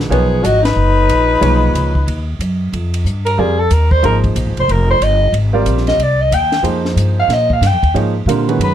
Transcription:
0.10 upright bass B1, grand piano F3 D#4 G#4 A#4 C#5, alto saxophone B3, soprano saxophone G#4, ride
0.43 upright bass G#1, alto saxophone F#4, soprano saxophone D#5, hi-hat pedal, ride
0.62 alto saxophone D#4, soprano saxophone B4, snare, ride
0.76 upright bass F#1
1.09 upright bass A#1, hi-hat pedal, ride
1.41 upright bass B1, grand piano A#2 F3 D#4 G#4 C#5, ride
1.74 upright bass C#2, hi-hat pedal, ride
1.95 kick
2.06 upright bass D#2, ride
2.39 upright bass F#2, hi-hat pedal, ride
2.72 upright bass F2, ride
2.94 ride
3.05 upright bass G2, hi-hat pedal
3.25 soprano saxophone A#4, ride
3.38 upright bass F2, grand piano G3 C4 F4 A#4 D5, soprano saxophone G#4
3.60 soprano saxophone A4
3.70 upright bass D#2, soprano saxophone A#4, hi-hat pedal, ride
3.91 soprano saxophone C5, kick
4.03 upright bass G#1, grand piano F3 A#3 D#4 G#4 C5, soprano saxophone A#4, ride
4.24 kick, ride
4.35 upright bass A#1, hi-hat pedal, ride
4.46 upright bass G#1
4.57 upright bass F1, soprano saxophone C5, ride
4.68 upright bass F1, soprano saxophone A#4, ride
4.90 soprano saxophone C5
5.00 upright bass G1, soprano saxophone D#5, hi-hat pedal, ride
5.32 upright bass G#1, ride
5.53 grand piano G3 C4 F4 A#4 D5
5.66 upright bass A#1, hi-hat pedal, ride
5.77 snare
5.87 soprano saxophone D#5, snare, ride
5.97 upright bass C2, ride
6.03 soprano saxophone D5
6.21 soprano saxophone D#5
6.31 upright bass D#2, soprano saxophone G5, hi-hat pedal, ride
6.52 snare, ride
6.63 upright bass F2, grand piano F3 A#3 D#4 G#4 C5, ride
6.85 snare
6.96 upright bass G2, hi-hat pedal, ride
7.20 soprano saxophone F5
7.28 upright bass A#2, snare, ride
7.33 soprano saxophone D#5
7.50 soprano saxophone F5, kick
7.61 upright bass G2, snare, hi-hat pedal, ride
7.67 soprano saxophone G5
7.72 upright bass F2
7.83 upright bass D#2, kick, ride
7.94 upright bass G#2, grand piano F3 A#3 D#4 G#4 C#5, ride
8.26 upright bass A#2, grand piano D3 G3 C4 F4 A#4, hi-hat pedal, ride
8.48 grand piano D#3 G#3 C#4 F#4 B4, ride
8.59 upright bass F#2, ride
8.63 soprano saxophone B4

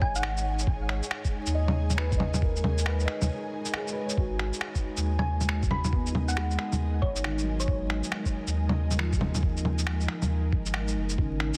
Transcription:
Already playing: ambient pad G#3 D#4 G#4 C#5 G#5, felt piano C#5 D#5
0.02 sub bass G#1, synth pluck G#5, kick
0.15 synth pluck F#5, shaker
0.23 finger snap
0.37 shaker
0.59 shaker
0.67 sub bass G#1, kick
0.89 finger snap
1.03 shaker
1.11 finger snap
1.25 kick, shaker
1.46 sub bass D#2, shaker
1.55 felt piano D#5
1.68 low bongo
1.90 low bongo, shaker
1.98 felt piano B4, finger snap
2.12 kick, shaker
2.18 felt piano D#5, low bongo
2.34 low bongo, shaker
2.42 felt piano A#4, kick
2.56 shaker
2.64 low bongo
2.78 shaker
2.86 felt piano B4, finger snap
3.00 shaker
3.05 felt piano D#5, finger snap
3.22 sub bass D#2, low bongo, shaker
3.65 shaker
3.74 felt piano G#4, finger snap
3.88 shaker
3.93 felt piano B4
4.06 felt piano C#5, shaker
4.18 sub bass G#1, felt piano F#4, kick
4.39 finger snap
4.53 shaker
4.61 ambient pad A#4 D#5, finger snap
4.75 kick, shaker
4.97 sub bass D#2, shaker
5.19 synth pluck G#5, low bongo
5.41 low bongo, shaker
5.49 finger snap
5.63 kick, shaker
5.71 synth pluck B5, low bongo
5.85 low bongo, shaker
5.93 felt piano B3, kick
6.06 shaker
6.12 felt piano D#4, low bongo
6.28 synth pluck F#5, shaker
6.37 felt piano G#3, finger snap
6.51 shaker
6.59 finger snap
6.72 sub bass D#2, low bongo, shaker
7.02 sub bass G#1, synth pluck C#5, kick
7.16 shaker
7.24 felt piano D#3, finger snap
7.38 shaker
7.43 felt piano F#3
7.60 synth pluck C#5, shaker
7.68 sub bass G#1, kick
7.90 finger snap
8.04 shaker
8.12 finger snap
8.25 kick, shaker
8.47 sub bass D#2, shaker
8.69 low bongo
8.91 low bongo, shaker
8.99 felt piano F3, finger snap
9.13 kick, shaker
9.18 felt piano G#3, low bongo
9.30 felt piano A#3
9.35 low bongo, shaker
9.43 kick
9.57 shaker
9.65 low bongo
9.79 shaker
9.87 finger snap
10.01 shaker
10.08 finger snap
10.22 sub bass D#2, low bongo, shaker
10.52 sub bass G#1, kick
10.66 ambient pad C#5, shaker
10.74 finger snap
10.88 shaker
10.97 sub bass F#1
11.09 shaker
11.18 sub bass G#1, felt piano C#3 D#3, kick
11.40 finger snap
11.54 shaker

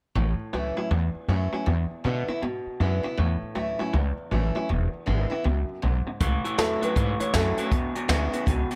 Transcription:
0.15 upright bass A1, steel-string acoustic guitar A2, clean electric guitar A2 E3
0.39 muted upright bass stroke
0.53 upright bass C#2, clean electric guitar A2 F#3, steel-string acoustic guitar E3 A3 C#4 E4
0.77 clean electric guitar A2 F#3, steel-string acoustic guitar C#4 E4
0.91 steel-string acoustic guitar E2, upright bass E2, clean electric guitar A2 E3
1.15 muted upright bass stroke
1.28 upright bass F#2, clean electric guitar A2 F#3, steel-string acoustic guitar E3 A3 C#4 E4
1.53 clean electric guitar A2 F#3, steel-string acoustic guitar C#4 E4, muted upright bass stroke
1.66 steel-string acoustic guitar E2, clean electric guitar E2 B2, upright bass E2
1.91 muted upright bass stroke
2.04 clean electric guitar E2 C#3, upright bass B2, steel-string acoustic guitar D3 G#3 B3 E4
2.28 clean electric guitar E2 C#3, steel-string acoustic guitar B3 E4, muted upright bass stroke
2.42 clean electric guitar E2 B2, upright bass G#2, steel-string acoustic guitar B2
2.66 muted upright bass stroke
2.80 clean electric guitar E2 C#3, upright bass F#2, steel-string acoustic guitar D3 G#3 B3 E4
3.03 clean electric guitar E2 C#3, steel-string acoustic guitar B3 E4
3.17 upright bass E2, steel-string acoustic guitar A2, clean electric guitar A2 E3
3.42 muted upright bass stroke
3.55 upright bass D2, clean electric guitar A2 F#3, steel-string acoustic guitar E3 A3 C#4 E4
3.79 clean electric guitar A2 F#3, steel-string acoustic guitar C#4 E4, muted upright bass stroke
3.93 upright bass C#2, steel-string acoustic guitar E2, clean electric guitar A2 E3
4.18 muted upright bass stroke
4.31 upright bass A1, clean electric guitar A2 F#3, steel-string acoustic guitar E3 A3 C#4 E4
4.55 clean electric guitar A2 F#3, steel-string acoustic guitar C#4 E4
4.69 upright bass E1, steel-string acoustic guitar E2, clean electric guitar E2 B2
4.94 muted upright bass stroke
5.06 upright bass G#1, clean electric guitar E2 C#3, steel-string acoustic guitar D3 G#3 B3 E4
5.30 clean electric guitar E2 C#3, steel-string acoustic guitar B3 E4, muted upright bass stroke
5.44 upright bass C#2, clean electric guitar E2 B2, steel-string acoustic guitar F#2
5.69 muted upright bass stroke
5.82 upright bass B1, clean electric guitar E2 C#3, steel-string acoustic guitar G#2
6.07 clean electric guitar E2 C#3, muted upright bass stroke
6.20 upright bass C#2, steel-string acoustic guitar A2, clean electric guitar A2 E3, kick, closed hi-hat
6.45 clean electric guitar A2 E3, closed hi-hat
6.58 upright bass E2, clean electric guitar A2 F#3, steel-string acoustic guitar E3 A3 C#4 E4, upright piano A4, snare, closed hi-hat
6.81 clean electric guitar A2 F#3, steel-string acoustic guitar C#4 E4, upright piano B4, muted upright bass stroke, closed hi-hat
6.95 upright bass G#2, clean electric guitar A2 E3, kick, closed hi-hat
7.20 clean electric guitar A2 E3, upright piano C#5, muted upright bass stroke, closed hi-hat
7.33 upright bass F#2, clean electric guitar A2 F#3, steel-string acoustic guitar E3 A3 C#4 E4, upright piano A4, kick, snare, closed hi-hat
7.57 clean electric guitar A2 F#3, steel-string acoustic guitar C#4 E4, muted upright bass stroke, closed hi-hat
7.71 steel-string acoustic guitar E2, clean electric guitar E2 B2, upright bass E2, kick, closed hi-hat
7.95 clean electric guitar E2 B2, muted upright bass stroke, closed hi-hat
8.08 upright bass D2, clean electric guitar E2 C#3, steel-string acoustic guitar D3 G#3 B3 E4, snare, closed hi-hat
8.32 clean electric guitar E2 C#3, steel-string acoustic guitar B3 E4, closed hi-hat
8.46 upright bass C#2, clean electric guitar E2 B2, steel-string acoustic guitar B2, kick, closed hi-hat
8.71 clean electric guitar E2 B2, closed hi-hat

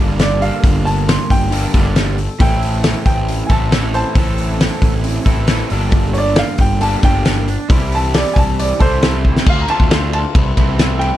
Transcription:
Already playing: picked electric bass G1, clean electric guitar G3 A#3 D4 A4
0.00 clean electric guitar G2 D3
0.19 upright piano D5, snare, open hi-hat
0.41 clean electric guitar G2 D3 G3 A#3 D4 A4, upright piano F5, open hi-hat
0.64 picked electric bass G1, kick, open hi-hat
0.85 upright piano A5, open hi-hat
1.08 upright piano C6, snare, open hi-hat
1.30 picked electric bass G1, upright piano G5, kick, open hi-hat
1.50 clean electric guitar G2 D3 G3 A#3 D4 A4, overdriven electric guitar A#4, open hi-hat
1.73 picked electric bass G1, clean electric guitar G2 D3 G3 A#3 D4 A4, kick, open hi-hat
1.96 snare, open hi-hat
2.18 open hi-hat
2.39 picked electric bass A1, clean electric guitar A2 E3 C4 E4 A4, upright piano G5, kick, open hi-hat
2.63 open hi-hat
2.84 snare, open hi-hat
3.06 picked electric bass A1, upright piano G5, kick, open hi-hat
3.28 open hi-hat
3.47 picked electric bass A1, clean electric guitar C4 E4 A4, upright piano G#5, kick, open hi-hat
3.51 clean electric guitar A2 E3, upright piano A5
3.71 clean electric guitar A2 E3 C4 E4 A4, snare, open hi-hat
3.94 upright piano C5 A5, open hi-hat
4.15 picked electric bass A1, clean electric guitar A2 E3 C4 E4 A4, kick, open hi-hat
4.38 open hi-hat
4.60 snare, open hi-hat
4.82 picked electric bass A1, kick, open hi-hat
5.04 open hi-hat
5.26 picked electric bass A1, clean electric guitar A2 E3 C4 E4 A4, kick, open hi-hat
5.47 clean electric guitar A2 E3 C4 E4 A4, snare, open hi-hat
5.70 picked electric bass G1, clean electric guitar G2 D3 G3 A#3 D4 A4, overdriven electric guitar G4, open hi-hat
5.92 kick, open hi-hat
6.13 upright piano C#5, open hi-hat
6.18 upright piano D5
6.36 upright piano F5, snare, open hi-hat
6.58 picked electric bass G1, upright piano G5, kick, open hi-hat
6.81 clean electric guitar G2 D3 G3 A#3 D4 A4, overdriven electric guitar G4, upright piano A5, open hi-hat
7.02 picked electric bass G1, clean electric guitar G2 D3 G3 A#3 D4 A4, overdriven electric guitar G4, upright piano G5, kick, open hi-hat
7.25 snare, open hi-hat
7.48 open hi-hat
7.69 picked electric bass C2, clean electric guitar C3 G3 C4 D4 E4, overdriven electric guitar E3 G4, kick, open hi-hat
7.92 upright piano A5, open hi-hat
8.14 upright piano D5, snare, open hi-hat
8.34 picked electric bass C2, upright piano G#5, kick, open hi-hat
8.38 upright piano A5
8.59 upright piano D5, open hi-hat
8.79 picked electric bass C2, clean electric guitar C3 G3 C4 D4 E4, overdriven electric guitar E3 G4, upright piano A4 C5, kick, open hi-hat
9.01 clean electric guitar C3 G3 C4 D4 E4, overdriven electric guitar E3, snare, open hi-hat
9.05 overdriven electric guitar G4
9.25 kick
9.37 snare
9.46 picked electric bass D2, clean electric guitar D3 A3 C4 F4, upright piano F5, kick, crash
9.62 upright piano A#5
9.68 overdriven electric guitar D3 D4, clean electric guitar A3 C4 F4, upright piano A5, ride
9.80 picked electric bass D2, kick
9.90 clean electric guitar D3 A3 C4 F4, overdriven electric guitar D4, snare, ride
10.12 clean electric guitar A3 C4 F4, upright piano A5, ride
10.35 picked electric bass C2, clean electric guitar C3 E3 A3 C4 E4, kick, ride
10.57 picked electric bass C2, overdriven electric guitar E3, clean electric guitar A3 C4 E4, kick, ride
10.78 clean electric guitar E3 A3 C4 E4, snare, ride
10.99 upright piano G5, ride

